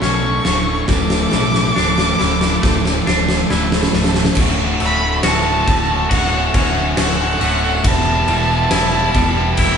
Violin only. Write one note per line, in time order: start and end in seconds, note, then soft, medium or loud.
0.02 0.90 C#6 loud
0.88 3.50 D6 loud
4.84 5.23 B5 loud
5.28 6.09 A5 loud
6.13 6.53 F#5 loud
6.56 6.96 F#5 medium
6.98 7.88 F#5 loud
7.87 9.58 A5 loud
9.56 9.77 G5 loud